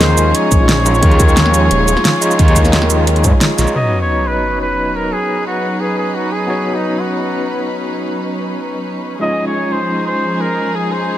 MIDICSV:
0, 0, Header, 1, 7, 480
1, 0, Start_track
1, 0, Tempo, 340909
1, 1447, Time_signature, 4, 2, 24, 8
1, 15739, End_track
2, 0, Start_track
2, 0, Title_t, "Flugelhorn"
2, 0, Program_c, 0, 56
2, 14, Note_on_c, 0, 72, 110
2, 490, Note_on_c, 0, 73, 111
2, 512, Note_off_c, 0, 72, 0
2, 4809, Note_off_c, 0, 73, 0
2, 5292, Note_on_c, 0, 75, 110
2, 5628, Note_off_c, 0, 75, 0
2, 5658, Note_on_c, 0, 73, 100
2, 6013, Note_on_c, 0, 71, 101
2, 6034, Note_off_c, 0, 73, 0
2, 6490, Note_off_c, 0, 71, 0
2, 6499, Note_on_c, 0, 71, 96
2, 6980, Note_on_c, 0, 70, 91
2, 7001, Note_off_c, 0, 71, 0
2, 7216, Note_on_c, 0, 68, 101
2, 7237, Note_off_c, 0, 70, 0
2, 7692, Note_off_c, 0, 68, 0
2, 7697, Note_on_c, 0, 66, 90
2, 8173, Note_on_c, 0, 68, 92
2, 8194, Note_off_c, 0, 66, 0
2, 8406, Note_off_c, 0, 68, 0
2, 8415, Note_on_c, 0, 68, 83
2, 8650, Note_on_c, 0, 66, 87
2, 8672, Note_off_c, 0, 68, 0
2, 8895, Note_on_c, 0, 68, 94
2, 8916, Note_off_c, 0, 66, 0
2, 9498, Note_on_c, 0, 63, 82
2, 9519, Note_off_c, 0, 68, 0
2, 9852, Note_on_c, 0, 66, 87
2, 9873, Note_off_c, 0, 63, 0
2, 10810, Note_off_c, 0, 66, 0
2, 12973, Note_on_c, 0, 75, 111
2, 13309, Note_off_c, 0, 75, 0
2, 13337, Note_on_c, 0, 73, 99
2, 13690, Note_on_c, 0, 72, 101
2, 13711, Note_off_c, 0, 73, 0
2, 14169, Note_off_c, 0, 72, 0
2, 14175, Note_on_c, 0, 72, 96
2, 14653, Note_on_c, 0, 70, 96
2, 14674, Note_off_c, 0, 72, 0
2, 15139, Note_on_c, 0, 68, 84
2, 15160, Note_off_c, 0, 70, 0
2, 15374, Note_on_c, 0, 72, 95
2, 15395, Note_off_c, 0, 68, 0
2, 15739, Note_off_c, 0, 72, 0
2, 15739, End_track
3, 0, Start_track
3, 0, Title_t, "String section"
3, 0, Program_c, 1, 48
3, 0, Note_on_c, 1, 53, 81
3, 0, Note_on_c, 1, 61, 74
3, 0, Note_on_c, 1, 63, 73
3, 0, Note_on_c, 1, 68, 88
3, 1391, Note_off_c, 1, 63, 0
3, 1442, Note_on_c, 1, 65, 75
3, 5225, Note_off_c, 1, 68, 0
3, 5226, Note_off_c, 1, 53, 0
3, 5231, Note_off_c, 1, 61, 0
3, 5246, Note_off_c, 1, 65, 0
3, 5288, Note_on_c, 1, 54, 71
3, 5289, Note_on_c, 1, 63, 67
3, 5290, Note_on_c, 1, 61, 67
3, 5290, Note_on_c, 1, 71, 79
3, 12911, Note_off_c, 1, 54, 0
3, 12912, Note_off_c, 1, 63, 0
3, 12912, Note_off_c, 1, 71, 0
3, 12971, Note_on_c, 1, 53, 73
3, 12972, Note_on_c, 1, 68, 82
3, 12973, Note_on_c, 1, 63, 69
3, 15739, Note_off_c, 1, 53, 0
3, 15739, Note_off_c, 1, 61, 0
3, 15739, Note_off_c, 1, 63, 0
3, 15739, Note_off_c, 1, 68, 0
3, 15739, End_track
4, 0, Start_track
4, 0, Title_t, "Tine electric piano"
4, 0, Program_c, 2, 4
4, 0, Control_c, 2, 64, 127
4, 0, Note_on_c, 2, 56, 100
4, 0, Note_on_c, 2, 61, 105
4, 0, Note_on_c, 2, 63, 89
4, 0, Note_on_c, 2, 65, 91
4, 0, Note_on_c, 2, 73, 87
4, 1168, Note_off_c, 2, 56, 0
4, 1177, Note_off_c, 2, 63, 0
4, 1184, Note_off_c, 2, 65, 0
4, 1190, Note_off_c, 2, 61, 0
4, 1196, Note_on_c, 2, 56, 78
4, 1202, Note_on_c, 2, 63, 74
4, 1208, Note_on_c, 2, 65, 74
4, 1216, Note_off_c, 2, 73, 0
4, 1216, Note_on_c, 2, 73, 85
4, 1410, Note_off_c, 2, 56, 0
4, 1417, Note_off_c, 2, 63, 0
4, 1420, Note_off_c, 2, 65, 0
4, 1423, Note_off_c, 2, 73, 0
4, 1427, Note_on_c, 2, 56, 95
4, 1442, Note_on_c, 2, 63, 91
4, 1456, Note_on_c, 2, 65, 93
4, 1469, Note_on_c, 2, 73, 109
4, 3089, Note_off_c, 2, 56, 0
4, 3097, Note_off_c, 2, 63, 0
4, 3104, Note_off_c, 2, 65, 0
4, 3110, Note_off_c, 2, 73, 0
4, 3113, Note_on_c, 2, 56, 80
4, 3121, Note_on_c, 2, 63, 74
4, 3127, Note_on_c, 2, 65, 71
4, 3136, Note_on_c, 2, 73, 89
4, 3325, Note_off_c, 2, 56, 0
4, 3336, Note_off_c, 2, 63, 0
4, 3339, Note_off_c, 2, 65, 0
4, 3342, Note_on_c, 2, 56, 96
4, 3344, Note_off_c, 2, 73, 0
4, 3357, Note_on_c, 2, 63, 92
4, 3370, Note_on_c, 2, 65, 89
4, 3386, Note_on_c, 2, 73, 109
4, 5007, Note_off_c, 2, 56, 0
4, 5014, Note_off_c, 2, 63, 0
4, 5021, Note_off_c, 2, 65, 0
4, 5029, Note_off_c, 2, 73, 0
4, 5037, Note_on_c, 2, 56, 81
4, 5044, Note_on_c, 2, 63, 76
4, 5051, Note_on_c, 2, 65, 76
4, 5056, Note_on_c, 2, 73, 91
4, 5254, Note_off_c, 2, 56, 0
4, 5258, Note_off_c, 2, 63, 0
4, 5261, Note_off_c, 2, 65, 0
4, 5264, Note_off_c, 2, 73, 0
4, 5265, Note_on_c, 2, 59, 73
4, 5280, Note_on_c, 2, 63, 65
4, 5293, Note_on_c, 2, 66, 66
4, 5303, Control_c, 2, 64, 0
4, 5307, Note_on_c, 2, 73, 79
4, 5586, Control_c, 2, 64, 127
4, 9088, Note_off_c, 2, 59, 0
4, 9096, Note_off_c, 2, 63, 0
4, 9102, Note_off_c, 2, 66, 0
4, 9108, Note_on_c, 2, 59, 72
4, 9109, Note_off_c, 2, 73, 0
4, 9122, Note_on_c, 2, 63, 66
4, 9135, Note_on_c, 2, 66, 65
4, 9151, Note_on_c, 2, 73, 81
4, 12930, Note_off_c, 2, 59, 0
4, 12937, Note_off_c, 2, 63, 0
4, 12943, Note_off_c, 2, 66, 0
4, 12947, Note_on_c, 2, 56, 75
4, 12951, Note_off_c, 2, 73, 0
4, 12961, Note_on_c, 2, 63, 67
4, 12976, Note_on_c, 2, 65, 66
4, 12987, Control_c, 2, 64, 0
4, 12990, Note_on_c, 2, 61, 79
4, 13209, Control_c, 2, 64, 127
4, 15739, Note_off_c, 2, 56, 0
4, 15739, Note_off_c, 2, 61, 0
4, 15739, Note_off_c, 2, 63, 0
4, 15739, Note_off_c, 2, 65, 0
4, 15739, End_track
5, 0, Start_track
5, 0, Title_t, "Detuned saw bass"
5, 0, Program_c, 3, 39
5, 0, Note_on_c, 3, 39, 98
5, 228, Note_off_c, 3, 39, 0
5, 247, Note_on_c, 3, 39, 85
5, 464, Note_off_c, 3, 39, 0
5, 726, Note_on_c, 3, 34, 85
5, 1428, Note_off_c, 3, 34, 0
5, 1446, Note_on_c, 3, 39, 99
5, 2148, Note_off_c, 3, 39, 0
5, 2166, Note_on_c, 3, 39, 87
5, 2383, Note_off_c, 3, 39, 0
5, 2407, Note_on_c, 3, 27, 88
5, 2624, Note_off_c, 3, 27, 0
5, 2646, Note_on_c, 3, 27, 93
5, 2758, Note_off_c, 3, 27, 0
5, 3368, Note_on_c, 3, 39, 99
5, 4069, Note_off_c, 3, 39, 0
5, 4084, Note_on_c, 3, 39, 86
5, 4566, Note_on_c, 3, 44, 99
5, 4587, Note_off_c, 3, 39, 0
5, 4678, Note_off_c, 3, 44, 0
5, 5046, Note_on_c, 3, 34, 109
5, 5158, Note_off_c, 3, 34, 0
5, 15739, End_track
6, 0, Start_track
6, 0, Title_t, "Sub drop"
6, 0, Program_c, 4, 103
6, 5287, Note_on_c, 4, 60, 66
6, 7207, Note_off_c, 4, 60, 0
6, 15739, End_track
7, 0, Start_track
7, 0, Title_t, "Drums"
7, 8, Note_on_c, 9, 38, 123
7, 8, Note_on_c, 9, 42, 94
7, 149, Note_off_c, 9, 38, 0
7, 149, Note_off_c, 9, 42, 0
7, 247, Note_on_c, 9, 42, 65
7, 247, Note_on_c, 9, 82, 62
7, 388, Note_off_c, 9, 42, 0
7, 388, Note_off_c, 9, 82, 0
7, 487, Note_on_c, 9, 42, 94
7, 628, Note_off_c, 9, 42, 0
7, 726, Note_on_c, 9, 36, 106
7, 727, Note_on_c, 9, 42, 64
7, 727, Note_on_c, 9, 82, 62
7, 867, Note_off_c, 9, 36, 0
7, 868, Note_off_c, 9, 42, 0
7, 868, Note_off_c, 9, 82, 0
7, 968, Note_on_c, 9, 38, 115
7, 968, Note_on_c, 9, 42, 94
7, 1109, Note_off_c, 9, 38, 0
7, 1109, Note_off_c, 9, 42, 0
7, 1209, Note_on_c, 9, 42, 65
7, 1209, Note_on_c, 9, 82, 63
7, 1331, Note_off_c, 9, 82, 0
7, 1331, Note_on_c, 9, 82, 29
7, 1350, Note_off_c, 9, 42, 0
7, 1444, Note_on_c, 9, 42, 97
7, 1446, Note_on_c, 9, 36, 115
7, 1472, Note_off_c, 9, 82, 0
7, 1570, Note_off_c, 9, 42, 0
7, 1570, Note_on_c, 9, 42, 39
7, 1587, Note_off_c, 9, 36, 0
7, 1685, Note_off_c, 9, 42, 0
7, 1685, Note_on_c, 9, 42, 70
7, 1685, Note_on_c, 9, 82, 63
7, 1687, Note_on_c, 9, 36, 110
7, 1811, Note_off_c, 9, 82, 0
7, 1811, Note_on_c, 9, 82, 30
7, 1826, Note_off_c, 9, 42, 0
7, 1828, Note_off_c, 9, 36, 0
7, 1926, Note_on_c, 9, 38, 118
7, 1926, Note_on_c, 9, 42, 100
7, 1952, Note_off_c, 9, 82, 0
7, 2051, Note_on_c, 9, 40, 56
7, 2067, Note_off_c, 9, 38, 0
7, 2067, Note_off_c, 9, 42, 0
7, 2169, Note_on_c, 9, 42, 69
7, 2169, Note_on_c, 9, 82, 64
7, 2192, Note_off_c, 9, 40, 0
7, 2310, Note_off_c, 9, 42, 0
7, 2310, Note_off_c, 9, 82, 0
7, 2406, Note_on_c, 9, 42, 95
7, 2547, Note_off_c, 9, 42, 0
7, 2646, Note_on_c, 9, 42, 69
7, 2646, Note_on_c, 9, 82, 65
7, 2770, Note_on_c, 9, 40, 35
7, 2787, Note_off_c, 9, 42, 0
7, 2787, Note_off_c, 9, 82, 0
7, 2886, Note_on_c, 9, 38, 117
7, 2886, Note_on_c, 9, 42, 94
7, 2911, Note_off_c, 9, 40, 0
7, 3027, Note_off_c, 9, 38, 0
7, 3027, Note_off_c, 9, 42, 0
7, 3126, Note_on_c, 9, 42, 68
7, 3126, Note_on_c, 9, 82, 64
7, 3252, Note_off_c, 9, 82, 0
7, 3252, Note_on_c, 9, 82, 29
7, 3266, Note_off_c, 9, 42, 0
7, 3367, Note_on_c, 9, 42, 100
7, 3368, Note_on_c, 9, 36, 115
7, 3392, Note_off_c, 9, 82, 0
7, 3491, Note_off_c, 9, 42, 0
7, 3491, Note_on_c, 9, 42, 39
7, 3508, Note_off_c, 9, 36, 0
7, 3605, Note_off_c, 9, 42, 0
7, 3605, Note_on_c, 9, 42, 71
7, 3605, Note_on_c, 9, 82, 61
7, 3607, Note_on_c, 9, 36, 62
7, 3729, Note_off_c, 9, 82, 0
7, 3729, Note_on_c, 9, 40, 35
7, 3729, Note_on_c, 9, 82, 29
7, 3745, Note_off_c, 9, 42, 0
7, 3748, Note_off_c, 9, 36, 0
7, 3845, Note_on_c, 9, 38, 117
7, 3845, Note_on_c, 9, 42, 100
7, 3869, Note_off_c, 9, 40, 0
7, 3869, Note_off_c, 9, 82, 0
7, 3968, Note_on_c, 9, 40, 57
7, 3986, Note_off_c, 9, 38, 0
7, 3986, Note_off_c, 9, 42, 0
7, 4083, Note_on_c, 9, 42, 70
7, 4083, Note_on_c, 9, 82, 62
7, 4109, Note_off_c, 9, 40, 0
7, 4224, Note_off_c, 9, 42, 0
7, 4224, Note_off_c, 9, 82, 0
7, 4326, Note_on_c, 9, 42, 102
7, 4450, Note_off_c, 9, 42, 0
7, 4450, Note_on_c, 9, 42, 40
7, 4564, Note_off_c, 9, 42, 0
7, 4564, Note_on_c, 9, 42, 71
7, 4564, Note_on_c, 9, 82, 62
7, 4567, Note_on_c, 9, 36, 107
7, 4705, Note_off_c, 9, 42, 0
7, 4705, Note_off_c, 9, 82, 0
7, 4708, Note_off_c, 9, 36, 0
7, 4803, Note_on_c, 9, 38, 115
7, 4803, Note_on_c, 9, 42, 99
7, 4944, Note_off_c, 9, 38, 0
7, 4944, Note_off_c, 9, 42, 0
7, 5047, Note_on_c, 9, 38, 37
7, 5047, Note_on_c, 9, 42, 73
7, 5047, Note_on_c, 9, 82, 63
7, 5172, Note_off_c, 9, 82, 0
7, 5172, Note_on_c, 9, 82, 29
7, 5188, Note_off_c, 9, 38, 0
7, 5188, Note_off_c, 9, 42, 0
7, 5313, Note_off_c, 9, 82, 0
7, 15739, End_track
0, 0, End_of_file